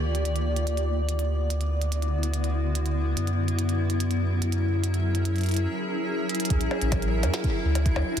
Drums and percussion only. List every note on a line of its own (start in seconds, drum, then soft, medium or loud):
0.15 closed hi-hat soft
0.25 closed hi-hat medium
0.36 closed hi-hat soft
0.56 closed hi-hat soft
0.67 closed hi-hat medium
0.77 closed hi-hat soft
1.09 closed hi-hat medium
1.19 closed hi-hat soft
1.50 closed hi-hat medium
1.61 closed hi-hat soft
1.82 closed hi-hat soft
1.92 closed hi-hat medium
2.02 closed hi-hat soft
2.23 closed hi-hat soft
2.34 closed hi-hat medium
2.44 closed hi-hat soft
2.75 closed hi-hat medium
2.86 closed hi-hat soft
3.17 closed hi-hat medium
3.27 closed hi-hat soft
3.48 closed hi-hat soft
3.59 closed hi-hat medium
3.69 closed hi-hat soft
3.90 closed hi-hat medium
4.00 closed hi-hat medium
4.11 closed hi-hat soft
4.42 closed hi-hat medium
4.52 closed hi-hat soft
4.84 closed hi-hat medium
4.94 closed hi-hat soft
5.15 closed hi-hat soft
5.25 closed hi-hat medium
5.36 closed hi-hat soft
5.38 closed hi-hat soft
5.41 closed hi-hat soft
5.43 closed hi-hat soft
5.46 closed hi-hat soft
5.49 closed hi-hat soft
5.51 closed hi-hat soft
5.54 closed hi-hat soft
5.57 closed hi-hat soft
6.29 closed hi-hat medium
6.35 closed hi-hat medium
6.40 closed hi-hat medium
6.45 closed hi-hat medium
6.50 kick loud
6.50 closed hi-hat medium
6.61 closed hi-hat soft
6.71 percussion blips medium
6.82 closed hi-hat soft
6.92 kick loud
6.92 closed hi-hat medium
6.92 percussion blips medium
7.02 closed hi-hat soft
7.23 closed hi-hat medium
7.23 percussion blips medium
7.34 snare loud
7.34 closed hi-hat medium
7.44 kick loud
7.44 closed hi-hat soft
7.75 closed hi-hat medium
7.75 percussion blips medium
7.86 kick loud
7.86 closed hi-hat soft
7.96 percussion blips medium
8.17 closed hi-hat medium